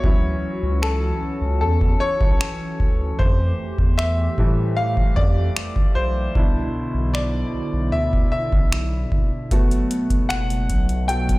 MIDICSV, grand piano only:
0, 0, Header, 1, 2, 480
1, 0, Start_track
1, 0, Tempo, 789474
1, 24, Time_signature, 4, 2, 24, 8
1, 6923, End_track
2, 0, Start_track
2, 0, Title_t, "Grand piano"
2, 0, Program_c, 0, 0
2, 0, Control_c, 0, 64, 127
2, 0, Note_on_c, 0, 73, 111
2, 24, Note_on_c, 0, 54, 55
2, 28, Note_on_c, 0, 61, 48
2, 31, Control_c, 0, 64, 0
2, 32, Note_on_c, 0, 64, 59
2, 137, Control_c, 0, 64, 127
2, 343, Note_off_c, 0, 54, 0
2, 345, Note_off_c, 0, 61, 0
2, 347, Note_off_c, 0, 64, 0
2, 501, Note_on_c, 0, 69, 83
2, 524, Note_off_c, 0, 73, 0
2, 969, Note_off_c, 0, 69, 0
2, 979, Note_on_c, 0, 69, 82
2, 1033, Note_off_c, 0, 69, 0
2, 1217, Note_on_c, 0, 73, 99
2, 1676, Note_off_c, 0, 73, 0
2, 1938, Note_on_c, 0, 72, 92
2, 1952, Control_c, 0, 64, 0
2, 2046, Control_c, 0, 64, 127
2, 2417, Note_on_c, 0, 76, 99
2, 2435, Note_off_c, 0, 72, 0
2, 2661, Note_on_c, 0, 55, 53
2, 2664, Note_on_c, 0, 57, 49
2, 2669, Note_on_c, 0, 52, 61
2, 2897, Note_on_c, 0, 77, 98
2, 2915, Note_off_c, 0, 76, 0
2, 3138, Note_on_c, 0, 74, 100
2, 3148, Note_off_c, 0, 77, 0
2, 3358, Note_off_c, 0, 55, 0
2, 3360, Note_off_c, 0, 57, 0
2, 3362, Note_off_c, 0, 52, 0
2, 3619, Note_on_c, 0, 72, 93
2, 3635, Note_off_c, 0, 74, 0
2, 3864, Note_on_c, 0, 47, 53
2, 3869, Note_on_c, 0, 62, 50
2, 3872, Control_c, 0, 64, 0
2, 3872, Note_on_c, 0, 64, 55
2, 3973, Control_c, 0, 64, 127
2, 4183, Note_off_c, 0, 47, 0
2, 4186, Note_off_c, 0, 62, 0
2, 4187, Note_off_c, 0, 64, 0
2, 4338, Note_on_c, 0, 74, 90
2, 4363, Note_off_c, 0, 72, 0
2, 4797, Note_off_c, 0, 74, 0
2, 4817, Note_on_c, 0, 76, 90
2, 5048, Note_off_c, 0, 76, 0
2, 5057, Note_on_c, 0, 76, 84
2, 5516, Note_off_c, 0, 76, 0
2, 5783, Note_on_c, 0, 57, 51
2, 5786, Note_on_c, 0, 59, 49
2, 5790, Note_on_c, 0, 66, 56
2, 5791, Control_c, 0, 64, 0
2, 5907, Control_c, 0, 64, 127
2, 6256, Note_on_c, 0, 78, 91
2, 6479, Note_off_c, 0, 57, 0
2, 6481, Note_off_c, 0, 59, 0
2, 6483, Note_off_c, 0, 66, 0
2, 6737, Note_on_c, 0, 79, 93
2, 6742, Note_on_c, 0, 57, 45
2, 6745, Note_on_c, 0, 59, 41
2, 6748, Note_on_c, 0, 54, 49
2, 6754, Note_off_c, 0, 78, 0
2, 6923, Note_off_c, 0, 54, 0
2, 6923, Note_off_c, 0, 57, 0
2, 6923, Note_off_c, 0, 59, 0
2, 6923, Note_off_c, 0, 79, 0
2, 6923, End_track
0, 0, End_of_file